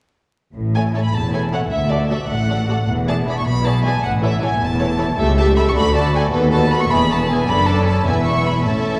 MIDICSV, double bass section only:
0, 0, Header, 1, 2, 480
1, 0, Start_track
1, 0, Key_signature, 3, "major"
1, 0, Tempo, 388350
1, 672, Time_signature, 6, 3, 24, 8
1, 4025, Tempo, 382897
1, 9305, Tempo, 393443
1, 11170, End_track
2, 0, Start_track
2, 0, Title_t, "Double bass section"
2, 0, Program_c, 0, 48
2, 675, Note_on_c, 0, 33, 45
2, 1279, Note_off_c, 0, 33, 0
2, 1397, Note_on_c, 0, 28, 50
2, 1994, Note_off_c, 0, 28, 0
2, 2117, Note_on_c, 0, 38, 47
2, 2710, Note_off_c, 0, 38, 0
2, 2841, Note_on_c, 0, 33, 51
2, 3432, Note_off_c, 0, 33, 0
2, 3567, Note_on_c, 0, 28, 50
2, 4156, Note_off_c, 0, 28, 0
2, 4277, Note_on_c, 0, 35, 57
2, 4871, Note_off_c, 0, 35, 0
2, 5008, Note_on_c, 0, 33, 57
2, 5595, Note_off_c, 0, 33, 0
2, 5715, Note_on_c, 0, 28, 59
2, 6309, Note_off_c, 0, 28, 0
2, 6433, Note_on_c, 0, 37, 63
2, 7060, Note_off_c, 0, 37, 0
2, 7142, Note_on_c, 0, 38, 62
2, 7772, Note_off_c, 0, 38, 0
2, 7868, Note_on_c, 0, 39, 66
2, 8500, Note_off_c, 0, 39, 0
2, 8592, Note_on_c, 0, 28, 69
2, 9226, Note_off_c, 0, 28, 0
2, 9311, Note_on_c, 0, 30, 56
2, 9972, Note_off_c, 0, 30, 0
2, 10028, Note_on_c, 0, 28, 55
2, 10748, Note_off_c, 0, 28, 0
2, 10767, Note_on_c, 0, 33, 47
2, 11170, Note_off_c, 0, 33, 0
2, 11170, End_track
0, 0, End_of_file